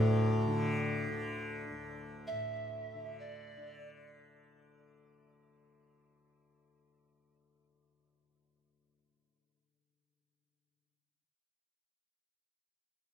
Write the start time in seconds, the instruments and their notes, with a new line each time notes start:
Already playing: tanpura D2 A2 D3, qanun F5
0.48 tanpura D3
1.09 tanpura D3
1.71 tanpura D2
2.27 pan flute E5
2.31 tanpura A2
2.94 tanpura D3
3.19 pan flute D5
3.57 tanpura D3